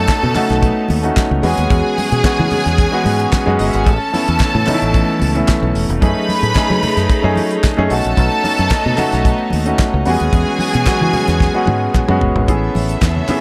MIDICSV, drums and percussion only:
0, 0, Header, 1, 2, 480
1, 0, Start_track
1, 0, Tempo, 539084
1, 1518, Time_signature, 4, 2, 24, 8
1, 11937, End_track
2, 0, Start_track
2, 0, Title_t, "Drums"
2, 74, Note_on_c, 9, 36, 111
2, 74, Note_on_c, 9, 39, 93
2, 79, Note_off_c, 9, 39, 0
2, 79, Note_on_c, 9, 39, 86
2, 82, Note_on_c, 9, 38, 97
2, 84, Note_on_c, 9, 42, 64
2, 163, Note_off_c, 9, 36, 0
2, 168, Note_off_c, 9, 39, 0
2, 171, Note_off_c, 9, 38, 0
2, 173, Note_off_c, 9, 42, 0
2, 207, Note_on_c, 9, 62, 37
2, 207, Note_on_c, 9, 64, 75
2, 296, Note_off_c, 9, 62, 0
2, 296, Note_off_c, 9, 64, 0
2, 312, Note_on_c, 9, 46, 60
2, 314, Note_on_c, 9, 39, 76
2, 316, Note_on_c, 9, 63, 80
2, 316, Note_on_c, 9, 64, 84
2, 401, Note_off_c, 9, 46, 0
2, 403, Note_off_c, 9, 39, 0
2, 405, Note_off_c, 9, 63, 0
2, 405, Note_off_c, 9, 64, 0
2, 443, Note_on_c, 9, 42, 46
2, 449, Note_on_c, 9, 38, 37
2, 532, Note_off_c, 9, 42, 0
2, 538, Note_off_c, 9, 38, 0
2, 557, Note_on_c, 9, 36, 109
2, 557, Note_on_c, 9, 42, 73
2, 646, Note_off_c, 9, 36, 0
2, 646, Note_off_c, 9, 42, 0
2, 787, Note_on_c, 9, 63, 80
2, 800, Note_on_c, 9, 46, 53
2, 876, Note_off_c, 9, 63, 0
2, 889, Note_off_c, 9, 46, 0
2, 921, Note_on_c, 9, 42, 47
2, 1010, Note_off_c, 9, 42, 0
2, 1038, Note_on_c, 9, 39, 87
2, 1039, Note_on_c, 9, 36, 94
2, 1039, Note_on_c, 9, 42, 80
2, 1042, Note_off_c, 9, 39, 0
2, 1042, Note_on_c, 9, 38, 109
2, 1042, Note_on_c, 9, 39, 92
2, 1042, Note_on_c, 9, 63, 81
2, 1128, Note_off_c, 9, 36, 0
2, 1128, Note_off_c, 9, 42, 0
2, 1131, Note_off_c, 9, 38, 0
2, 1131, Note_off_c, 9, 39, 0
2, 1131, Note_off_c, 9, 63, 0
2, 1173, Note_on_c, 9, 62, 31
2, 1262, Note_off_c, 9, 62, 0
2, 1275, Note_on_c, 9, 46, 75
2, 1364, Note_off_c, 9, 46, 0
2, 1402, Note_on_c, 9, 42, 45
2, 1491, Note_off_c, 9, 42, 0
2, 1516, Note_on_c, 9, 42, 68
2, 1518, Note_on_c, 9, 36, 117
2, 1522, Note_on_c, 9, 62, 38
2, 1605, Note_off_c, 9, 42, 0
2, 1607, Note_off_c, 9, 36, 0
2, 1611, Note_off_c, 9, 62, 0
2, 1763, Note_on_c, 9, 46, 74
2, 1763, Note_on_c, 9, 63, 89
2, 1852, Note_off_c, 9, 46, 0
2, 1852, Note_off_c, 9, 63, 0
2, 1884, Note_on_c, 9, 42, 51
2, 1973, Note_off_c, 9, 42, 0
2, 1995, Note_on_c, 9, 36, 114
2, 1995, Note_on_c, 9, 62, 42
2, 1999, Note_on_c, 9, 39, 92
2, 2001, Note_off_c, 9, 39, 0
2, 2001, Note_on_c, 9, 39, 83
2, 2003, Note_on_c, 9, 38, 108
2, 2004, Note_on_c, 9, 42, 60
2, 2084, Note_off_c, 9, 36, 0
2, 2084, Note_off_c, 9, 62, 0
2, 2090, Note_off_c, 9, 39, 0
2, 2092, Note_off_c, 9, 38, 0
2, 2093, Note_off_c, 9, 42, 0
2, 2132, Note_on_c, 9, 64, 77
2, 2221, Note_off_c, 9, 64, 0
2, 2232, Note_on_c, 9, 46, 59
2, 2241, Note_on_c, 9, 63, 82
2, 2241, Note_on_c, 9, 64, 85
2, 2321, Note_off_c, 9, 46, 0
2, 2330, Note_off_c, 9, 63, 0
2, 2330, Note_off_c, 9, 64, 0
2, 2363, Note_on_c, 9, 42, 46
2, 2369, Note_on_c, 9, 38, 39
2, 2452, Note_off_c, 9, 42, 0
2, 2458, Note_off_c, 9, 38, 0
2, 2479, Note_on_c, 9, 36, 115
2, 2479, Note_on_c, 9, 42, 73
2, 2568, Note_off_c, 9, 36, 0
2, 2569, Note_off_c, 9, 42, 0
2, 2604, Note_on_c, 9, 62, 36
2, 2693, Note_off_c, 9, 62, 0
2, 2707, Note_on_c, 9, 63, 76
2, 2721, Note_on_c, 9, 46, 59
2, 2796, Note_off_c, 9, 63, 0
2, 2810, Note_off_c, 9, 46, 0
2, 2844, Note_on_c, 9, 42, 42
2, 2933, Note_off_c, 9, 42, 0
2, 2959, Note_on_c, 9, 39, 75
2, 2959, Note_on_c, 9, 42, 76
2, 2959, Note_on_c, 9, 62, 35
2, 2959, Note_on_c, 9, 63, 75
2, 2961, Note_on_c, 9, 36, 108
2, 2962, Note_on_c, 9, 38, 110
2, 2964, Note_off_c, 9, 39, 0
2, 2964, Note_on_c, 9, 39, 91
2, 3048, Note_off_c, 9, 42, 0
2, 3048, Note_off_c, 9, 62, 0
2, 3048, Note_off_c, 9, 63, 0
2, 3050, Note_off_c, 9, 36, 0
2, 3051, Note_off_c, 9, 38, 0
2, 3053, Note_off_c, 9, 39, 0
2, 3197, Note_on_c, 9, 46, 79
2, 3286, Note_off_c, 9, 46, 0
2, 3326, Note_on_c, 9, 42, 48
2, 3415, Note_off_c, 9, 42, 0
2, 3441, Note_on_c, 9, 42, 72
2, 3442, Note_on_c, 9, 36, 110
2, 3443, Note_on_c, 9, 62, 36
2, 3530, Note_off_c, 9, 42, 0
2, 3531, Note_off_c, 9, 36, 0
2, 3532, Note_off_c, 9, 62, 0
2, 3684, Note_on_c, 9, 63, 84
2, 3688, Note_on_c, 9, 46, 77
2, 3773, Note_off_c, 9, 63, 0
2, 3777, Note_off_c, 9, 46, 0
2, 3808, Note_on_c, 9, 42, 51
2, 3897, Note_off_c, 9, 42, 0
2, 3915, Note_on_c, 9, 39, 90
2, 3915, Note_on_c, 9, 62, 40
2, 3918, Note_on_c, 9, 36, 116
2, 3925, Note_off_c, 9, 39, 0
2, 3925, Note_on_c, 9, 39, 80
2, 3928, Note_on_c, 9, 38, 108
2, 3929, Note_on_c, 9, 42, 70
2, 4004, Note_off_c, 9, 62, 0
2, 4007, Note_off_c, 9, 36, 0
2, 4014, Note_off_c, 9, 39, 0
2, 4017, Note_off_c, 9, 38, 0
2, 4018, Note_off_c, 9, 42, 0
2, 4053, Note_on_c, 9, 62, 34
2, 4053, Note_on_c, 9, 64, 71
2, 4142, Note_off_c, 9, 62, 0
2, 4142, Note_off_c, 9, 64, 0
2, 4152, Note_on_c, 9, 39, 75
2, 4159, Note_on_c, 9, 46, 61
2, 4164, Note_on_c, 9, 63, 79
2, 4164, Note_on_c, 9, 64, 84
2, 4241, Note_off_c, 9, 39, 0
2, 4248, Note_off_c, 9, 46, 0
2, 4253, Note_off_c, 9, 63, 0
2, 4253, Note_off_c, 9, 64, 0
2, 4290, Note_on_c, 9, 42, 52
2, 4380, Note_off_c, 9, 42, 0
2, 4396, Note_on_c, 9, 62, 40
2, 4401, Note_on_c, 9, 36, 105
2, 4402, Note_on_c, 9, 42, 66
2, 4485, Note_off_c, 9, 62, 0
2, 4490, Note_off_c, 9, 36, 0
2, 4492, Note_off_c, 9, 42, 0
2, 4529, Note_on_c, 9, 62, 33
2, 4618, Note_off_c, 9, 62, 0
2, 4626, Note_on_c, 9, 63, 84
2, 4644, Note_on_c, 9, 46, 63
2, 4715, Note_off_c, 9, 63, 0
2, 4733, Note_off_c, 9, 46, 0
2, 4767, Note_on_c, 9, 42, 46
2, 4856, Note_off_c, 9, 42, 0
2, 4879, Note_on_c, 9, 62, 37
2, 4879, Note_on_c, 9, 63, 78
2, 4880, Note_on_c, 9, 39, 85
2, 4882, Note_off_c, 9, 39, 0
2, 4882, Note_on_c, 9, 39, 83
2, 4882, Note_on_c, 9, 42, 69
2, 4883, Note_on_c, 9, 36, 99
2, 4885, Note_on_c, 9, 38, 108
2, 4968, Note_off_c, 9, 62, 0
2, 4968, Note_off_c, 9, 63, 0
2, 4971, Note_off_c, 9, 39, 0
2, 4971, Note_off_c, 9, 42, 0
2, 4972, Note_off_c, 9, 36, 0
2, 4974, Note_off_c, 9, 38, 0
2, 5008, Note_on_c, 9, 62, 35
2, 5097, Note_off_c, 9, 62, 0
2, 5122, Note_on_c, 9, 46, 77
2, 5211, Note_off_c, 9, 46, 0
2, 5249, Note_on_c, 9, 42, 54
2, 5338, Note_off_c, 9, 42, 0
2, 5361, Note_on_c, 9, 36, 104
2, 5361, Note_on_c, 9, 62, 39
2, 5362, Note_on_c, 9, 42, 69
2, 5450, Note_off_c, 9, 36, 0
2, 5450, Note_off_c, 9, 62, 0
2, 5451, Note_off_c, 9, 42, 0
2, 5599, Note_on_c, 9, 63, 81
2, 5606, Note_on_c, 9, 46, 71
2, 5688, Note_off_c, 9, 63, 0
2, 5695, Note_off_c, 9, 46, 0
2, 5728, Note_on_c, 9, 42, 50
2, 5817, Note_off_c, 9, 42, 0
2, 5833, Note_on_c, 9, 39, 92
2, 5833, Note_on_c, 9, 62, 40
2, 5837, Note_on_c, 9, 36, 97
2, 5844, Note_off_c, 9, 39, 0
2, 5844, Note_on_c, 9, 39, 78
2, 5847, Note_on_c, 9, 38, 106
2, 5849, Note_on_c, 9, 42, 58
2, 5922, Note_off_c, 9, 62, 0
2, 5926, Note_off_c, 9, 36, 0
2, 5933, Note_off_c, 9, 39, 0
2, 5936, Note_off_c, 9, 38, 0
2, 5938, Note_off_c, 9, 42, 0
2, 5971, Note_on_c, 9, 62, 35
2, 5971, Note_on_c, 9, 64, 76
2, 6060, Note_off_c, 9, 62, 0
2, 6060, Note_off_c, 9, 64, 0
2, 6077, Note_on_c, 9, 46, 58
2, 6081, Note_on_c, 9, 63, 80
2, 6081, Note_on_c, 9, 64, 82
2, 6166, Note_off_c, 9, 46, 0
2, 6170, Note_off_c, 9, 63, 0
2, 6170, Note_off_c, 9, 64, 0
2, 6205, Note_on_c, 9, 42, 49
2, 6211, Note_on_c, 9, 38, 34
2, 6294, Note_off_c, 9, 42, 0
2, 6300, Note_off_c, 9, 38, 0
2, 6317, Note_on_c, 9, 42, 76
2, 6318, Note_on_c, 9, 36, 113
2, 6407, Note_off_c, 9, 36, 0
2, 6407, Note_off_c, 9, 42, 0
2, 6447, Note_on_c, 9, 62, 36
2, 6536, Note_off_c, 9, 62, 0
2, 6549, Note_on_c, 9, 63, 85
2, 6564, Note_on_c, 9, 46, 54
2, 6638, Note_off_c, 9, 63, 0
2, 6653, Note_off_c, 9, 46, 0
2, 6683, Note_on_c, 9, 42, 43
2, 6772, Note_off_c, 9, 42, 0
2, 6798, Note_on_c, 9, 39, 74
2, 6799, Note_on_c, 9, 42, 78
2, 6800, Note_on_c, 9, 36, 97
2, 6802, Note_on_c, 9, 38, 106
2, 6802, Note_on_c, 9, 63, 80
2, 6803, Note_off_c, 9, 39, 0
2, 6803, Note_on_c, 9, 39, 86
2, 6888, Note_off_c, 9, 42, 0
2, 6889, Note_off_c, 9, 36, 0
2, 6891, Note_off_c, 9, 38, 0
2, 6891, Note_off_c, 9, 63, 0
2, 6892, Note_off_c, 9, 39, 0
2, 6930, Note_on_c, 9, 62, 33
2, 7019, Note_off_c, 9, 62, 0
2, 7036, Note_on_c, 9, 46, 76
2, 7125, Note_off_c, 9, 46, 0
2, 7163, Note_on_c, 9, 42, 51
2, 7252, Note_off_c, 9, 42, 0
2, 7278, Note_on_c, 9, 36, 105
2, 7278, Note_on_c, 9, 42, 68
2, 7367, Note_off_c, 9, 36, 0
2, 7367, Note_off_c, 9, 42, 0
2, 7408, Note_on_c, 9, 62, 37
2, 7497, Note_off_c, 9, 62, 0
2, 7517, Note_on_c, 9, 63, 79
2, 7522, Note_on_c, 9, 46, 69
2, 7606, Note_off_c, 9, 63, 0
2, 7611, Note_off_c, 9, 46, 0
2, 7644, Note_on_c, 9, 42, 49
2, 7733, Note_off_c, 9, 42, 0
2, 7753, Note_on_c, 9, 36, 108
2, 7754, Note_on_c, 9, 39, 96
2, 7759, Note_off_c, 9, 39, 0
2, 7759, Note_on_c, 9, 39, 86
2, 7762, Note_on_c, 9, 38, 107
2, 7763, Note_on_c, 9, 42, 69
2, 7842, Note_off_c, 9, 36, 0
2, 7848, Note_off_c, 9, 39, 0
2, 7851, Note_off_c, 9, 38, 0
2, 7852, Note_off_c, 9, 42, 0
2, 7887, Note_on_c, 9, 64, 80
2, 7976, Note_off_c, 9, 64, 0
2, 7991, Note_on_c, 9, 39, 72
2, 7992, Note_on_c, 9, 46, 57
2, 7998, Note_on_c, 9, 63, 75
2, 7998, Note_on_c, 9, 64, 78
2, 8080, Note_off_c, 9, 39, 0
2, 8081, Note_off_c, 9, 46, 0
2, 8087, Note_off_c, 9, 63, 0
2, 8087, Note_off_c, 9, 64, 0
2, 8123, Note_on_c, 9, 42, 45
2, 8129, Note_on_c, 9, 38, 35
2, 8212, Note_off_c, 9, 42, 0
2, 8218, Note_off_c, 9, 38, 0
2, 8233, Note_on_c, 9, 62, 34
2, 8236, Note_on_c, 9, 36, 117
2, 8238, Note_on_c, 9, 42, 68
2, 8322, Note_off_c, 9, 62, 0
2, 8325, Note_off_c, 9, 36, 0
2, 8327, Note_off_c, 9, 42, 0
2, 8360, Note_on_c, 9, 62, 30
2, 8449, Note_off_c, 9, 62, 0
2, 8461, Note_on_c, 9, 63, 78
2, 8483, Note_on_c, 9, 46, 63
2, 8550, Note_off_c, 9, 63, 0
2, 8572, Note_off_c, 9, 46, 0
2, 8600, Note_on_c, 9, 42, 49
2, 8689, Note_off_c, 9, 42, 0
2, 8710, Note_on_c, 9, 62, 39
2, 8710, Note_on_c, 9, 63, 86
2, 8715, Note_on_c, 9, 39, 80
2, 8715, Note_on_c, 9, 42, 86
2, 8717, Note_off_c, 9, 39, 0
2, 8717, Note_on_c, 9, 36, 109
2, 8717, Note_on_c, 9, 39, 81
2, 8719, Note_on_c, 9, 38, 98
2, 8799, Note_off_c, 9, 62, 0
2, 8799, Note_off_c, 9, 63, 0
2, 8805, Note_off_c, 9, 42, 0
2, 8806, Note_off_c, 9, 36, 0
2, 8806, Note_off_c, 9, 39, 0
2, 8808, Note_off_c, 9, 38, 0
2, 8952, Note_on_c, 9, 46, 76
2, 9041, Note_off_c, 9, 46, 0
2, 9081, Note_on_c, 9, 42, 50
2, 9170, Note_off_c, 9, 42, 0
2, 9195, Note_on_c, 9, 42, 67
2, 9196, Note_on_c, 9, 36, 109
2, 9284, Note_off_c, 9, 42, 0
2, 9285, Note_off_c, 9, 36, 0
2, 9319, Note_on_c, 9, 62, 36
2, 9408, Note_off_c, 9, 62, 0
2, 9429, Note_on_c, 9, 63, 86
2, 9441, Note_on_c, 9, 46, 71
2, 9518, Note_off_c, 9, 63, 0
2, 9530, Note_off_c, 9, 46, 0
2, 9561, Note_on_c, 9, 42, 50
2, 9650, Note_off_c, 9, 42, 0
2, 9664, Note_on_c, 9, 62, 40
2, 9672, Note_on_c, 9, 36, 105
2, 9672, Note_on_c, 9, 39, 88
2, 9678, Note_off_c, 9, 39, 0
2, 9678, Note_on_c, 9, 39, 89
2, 9681, Note_on_c, 9, 38, 110
2, 9683, Note_on_c, 9, 42, 60
2, 9753, Note_off_c, 9, 62, 0
2, 9761, Note_off_c, 9, 36, 0
2, 9767, Note_off_c, 9, 39, 0
2, 9770, Note_off_c, 9, 38, 0
2, 9772, Note_off_c, 9, 42, 0
2, 9804, Note_on_c, 9, 64, 70
2, 9893, Note_off_c, 9, 64, 0
2, 9910, Note_on_c, 9, 46, 57
2, 9914, Note_on_c, 9, 63, 85
2, 9914, Note_on_c, 9, 64, 81
2, 9999, Note_off_c, 9, 46, 0
2, 10003, Note_off_c, 9, 63, 0
2, 10003, Note_off_c, 9, 64, 0
2, 10040, Note_on_c, 9, 42, 54
2, 10046, Note_on_c, 9, 38, 32
2, 10129, Note_off_c, 9, 42, 0
2, 10135, Note_off_c, 9, 38, 0
2, 10150, Note_on_c, 9, 62, 35
2, 10154, Note_on_c, 9, 36, 112
2, 10158, Note_on_c, 9, 38, 63
2, 10239, Note_off_c, 9, 62, 0
2, 10243, Note_off_c, 9, 36, 0
2, 10247, Note_off_c, 9, 38, 0
2, 10280, Note_on_c, 9, 62, 33
2, 10369, Note_off_c, 9, 62, 0
2, 10380, Note_on_c, 9, 63, 74
2, 10395, Note_on_c, 9, 48, 83
2, 10469, Note_off_c, 9, 63, 0
2, 10484, Note_off_c, 9, 48, 0
2, 10632, Note_on_c, 9, 63, 83
2, 10636, Note_on_c, 9, 36, 108
2, 10636, Note_on_c, 9, 47, 89
2, 10640, Note_on_c, 9, 39, 89
2, 10721, Note_off_c, 9, 63, 0
2, 10725, Note_off_c, 9, 36, 0
2, 10725, Note_off_c, 9, 47, 0
2, 10729, Note_off_c, 9, 39, 0
2, 10760, Note_on_c, 9, 62, 37
2, 10761, Note_on_c, 9, 45, 79
2, 10849, Note_off_c, 9, 62, 0
2, 10850, Note_off_c, 9, 45, 0
2, 10875, Note_on_c, 9, 43, 100
2, 10964, Note_off_c, 9, 43, 0
2, 11003, Note_on_c, 9, 43, 88
2, 11092, Note_off_c, 9, 43, 0
2, 11113, Note_on_c, 9, 62, 33
2, 11115, Note_on_c, 9, 36, 97
2, 11116, Note_on_c, 9, 42, 62
2, 11202, Note_off_c, 9, 62, 0
2, 11204, Note_off_c, 9, 36, 0
2, 11205, Note_off_c, 9, 42, 0
2, 11352, Note_on_c, 9, 63, 82
2, 11361, Note_on_c, 9, 46, 71
2, 11441, Note_off_c, 9, 63, 0
2, 11450, Note_off_c, 9, 46, 0
2, 11479, Note_on_c, 9, 42, 51
2, 11568, Note_off_c, 9, 42, 0
2, 11583, Note_on_c, 9, 62, 41
2, 11590, Note_on_c, 9, 36, 101
2, 11593, Note_on_c, 9, 39, 84
2, 11595, Note_off_c, 9, 39, 0
2, 11595, Note_on_c, 9, 39, 86
2, 11598, Note_on_c, 9, 38, 96
2, 11599, Note_on_c, 9, 42, 61
2, 11672, Note_off_c, 9, 62, 0
2, 11679, Note_off_c, 9, 36, 0
2, 11684, Note_off_c, 9, 39, 0
2, 11687, Note_off_c, 9, 38, 0
2, 11688, Note_off_c, 9, 42, 0
2, 11724, Note_on_c, 9, 64, 71
2, 11813, Note_off_c, 9, 64, 0
2, 11828, Note_on_c, 9, 39, 77
2, 11828, Note_on_c, 9, 46, 58
2, 11830, Note_on_c, 9, 63, 82
2, 11830, Note_on_c, 9, 64, 76
2, 11917, Note_off_c, 9, 39, 0
2, 11917, Note_off_c, 9, 46, 0
2, 11920, Note_off_c, 9, 63, 0
2, 11920, Note_off_c, 9, 64, 0
2, 11937, End_track
0, 0, End_of_file